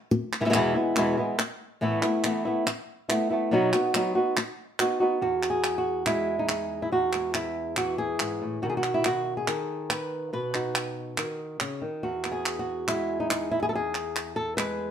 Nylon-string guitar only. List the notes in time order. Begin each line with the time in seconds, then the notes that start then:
0.11 muted nylon-string guitar stroke
0.41 B2 E3 G#3 B3 E4
0.45 B2 E3 G#3 B3 E4
0.50 B2 E3 G#3 B3 E4
0.54 E2 B2 E3 G#3 B3 E4
0.74 E3 G#3 B3 E4
0.96 E2 B2 E3 G#3 B3 E4
1.17 E3 G#3 B3 E4
1.38 muted nylon-string guitar stroke
1.81 A2 E3 A3 B3 E4
2.02 A3 B3 E4
2.24 E3 A3 B3 E4
2.45 A3 B3 E4
2.66 muted nylon-string guitar stroke
3.09 A3 B3 E4
3.30 A3 B3 E4
3.51 B2 F#3 B3 D#4 F#4
3.73 B3 D#4 F#4
3.94 F#3 B3 D#4 F#4
4.15 B3 D#4 F#4
4.37 muted nylon-string guitar stroke
4.80 B3 D#4 F#4
5.00 B3 D#4 F#4
5.21 E2 F#4
5.50 G#4
5.78 F#4
6.06 G#3 E4
6.39 D#4
6.49 D#4
6.82 E4
6.92 E2 F#4
7.14 G#3 B3
7.35 E4
7.77 E3 F#4
7.98 G#4
8.20 G#2
8.42 A2
8.62 B2 D#3 F#4
8.70 G#4
8.77 F#4
8.85 D#3
8.94 E4
9.06 F#4
9.37 G#4
9.48 D#3 A4
9.90 B4
10.33 B2 B4
10.55 D#4 F#4
11.18 D#3
11.61 C#3
11.82 D#3
12.03 E2 F#4
12.25 B3
12.32 G#4
12.59 F#4
12.88 G#3 E4
13.20 D#4
13.30 D#4
13.51 E4
13.63 G#4
13.69 A4
13.73 E2 G#4
14.36 A4
14.57 G#3 B4